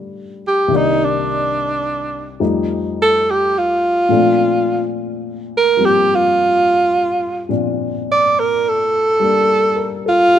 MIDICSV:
0, 0, Header, 1, 3, 480
1, 0, Start_track
1, 0, Key_signature, -2, "major"
1, 0, Tempo, 851064
1, 397, Time_signature, 4, 2, 24, 8
1, 5860, End_track
2, 0, Start_track
2, 0, Title_t, "Tenor saxophone"
2, 0, Program_c, 0, 66
2, 266, Note_on_c, 0, 67, 73
2, 429, Note_on_c, 0, 63, 69
2, 438, Note_off_c, 0, 67, 0
2, 587, Note_on_c, 0, 62, 71
2, 596, Note_off_c, 0, 63, 0
2, 1314, Note_off_c, 0, 62, 0
2, 1702, Note_on_c, 0, 69, 89
2, 1864, Note_on_c, 0, 67, 78
2, 1872, Note_off_c, 0, 69, 0
2, 2020, Note_on_c, 0, 65, 78
2, 2028, Note_off_c, 0, 67, 0
2, 2748, Note_off_c, 0, 65, 0
2, 3141, Note_on_c, 0, 70, 95
2, 3299, Note_on_c, 0, 67, 85
2, 3307, Note_off_c, 0, 70, 0
2, 3467, Note_on_c, 0, 65, 82
2, 3476, Note_off_c, 0, 67, 0
2, 4193, Note_off_c, 0, 65, 0
2, 4578, Note_on_c, 0, 74, 90
2, 4734, Note_on_c, 0, 70, 81
2, 4742, Note_off_c, 0, 74, 0
2, 4899, Note_on_c, 0, 69, 95
2, 4907, Note_off_c, 0, 70, 0
2, 5634, Note_off_c, 0, 69, 0
2, 5689, Note_on_c, 0, 65, 103
2, 5860, Note_off_c, 0, 65, 0
2, 5860, End_track
3, 0, Start_track
3, 0, Title_t, "Grand piano"
3, 0, Program_c, 1, 0
3, 0, Control_c, 1, 64, 127
3, 0, Note_on_c, 1, 43, 53
3, 0, Note_on_c, 1, 50, 39
3, 0, Note_on_c, 1, 55, 39
3, 0, Note_on_c, 1, 57, 38
3, 0, Note_on_c, 1, 58, 48
3, 0, Note_on_c, 1, 62, 46
3, 0, Note_on_c, 1, 65, 58
3, 383, Note_on_c, 1, 36, 55
3, 393, Note_off_c, 1, 43, 0
3, 393, Note_on_c, 1, 48, 47
3, 394, Note_off_c, 1, 50, 0
3, 396, Note_off_c, 1, 55, 0
3, 396, Note_off_c, 1, 58, 0
3, 397, Note_off_c, 1, 65, 0
3, 398, Note_off_c, 1, 57, 0
3, 398, Note_on_c, 1, 51, 49
3, 403, Control_c, 1, 64, 0
3, 404, Note_off_c, 1, 62, 0
3, 409, Note_on_c, 1, 58, 48
3, 414, Note_on_c, 1, 62, 61
3, 493, Control_c, 1, 64, 127
3, 1345, Note_off_c, 1, 36, 0
3, 1350, Note_off_c, 1, 48, 0
3, 1353, Note_off_c, 1, 51, 0
3, 1354, Note_on_c, 1, 41, 48
3, 1354, Note_on_c, 1, 53, 42
3, 1354, Note_on_c, 1, 55, 44
3, 1356, Note_on_c, 1, 57, 43
3, 1358, Note_off_c, 1, 58, 0
3, 1359, Control_c, 1, 64, 0
3, 1360, Note_on_c, 1, 63, 53
3, 1361, Note_off_c, 1, 62, 0
3, 1474, Control_c, 1, 64, 127
3, 2304, Note_off_c, 1, 53, 0
3, 2307, Note_off_c, 1, 57, 0
3, 2307, Note_on_c, 1, 46, 52
3, 2309, Note_off_c, 1, 41, 0
3, 2309, Note_off_c, 1, 55, 0
3, 2312, Note_off_c, 1, 63, 0
3, 2313, Note_on_c, 1, 53, 50
3, 2315, Note_on_c, 1, 57, 50
3, 2316, Control_c, 1, 64, 0
3, 2317, Note_on_c, 1, 62, 60
3, 2319, Note_on_c, 1, 60, 49
3, 2414, Control_c, 1, 64, 127
3, 3246, Note_off_c, 1, 53, 0
3, 3255, Note_on_c, 1, 53, 43
3, 3260, Note_on_c, 1, 55, 40
3, 3264, Note_off_c, 1, 60, 0
3, 3268, Note_on_c, 1, 58, 41
3, 3273, Note_on_c, 1, 60, 47
3, 4216, Note_off_c, 1, 46, 0
3, 4216, Note_off_c, 1, 53, 0
3, 4223, Note_off_c, 1, 55, 0
3, 4223, Note_off_c, 1, 62, 0
3, 4225, Note_off_c, 1, 60, 0
3, 4225, Note_on_c, 1, 46, 47
3, 4225, Note_on_c, 1, 53, 48
3, 4226, Note_off_c, 1, 58, 0
3, 4228, Note_off_c, 1, 57, 0
3, 4232, Note_on_c, 1, 62, 56
3, 4233, Note_on_c, 1, 60, 45
3, 5187, Note_on_c, 1, 55, 45
3, 5193, Note_off_c, 1, 62, 0
3, 5195, Note_on_c, 1, 58, 40
3, 5201, Note_on_c, 1, 62, 48
3, 5502, Note_on_c, 1, 70, 47
3, 5674, Note_on_c, 1, 69, 50
3, 5757, Note_off_c, 1, 70, 0
3, 5839, Note_on_c, 1, 67, 47
3, 5860, Note_off_c, 1, 46, 0
3, 5860, Note_off_c, 1, 53, 0
3, 5860, Note_off_c, 1, 55, 0
3, 5860, Note_off_c, 1, 58, 0
3, 5860, Note_off_c, 1, 60, 0
3, 5860, Note_off_c, 1, 62, 0
3, 5860, Note_off_c, 1, 67, 0
3, 5860, Note_off_c, 1, 69, 0
3, 5860, End_track
0, 0, End_of_file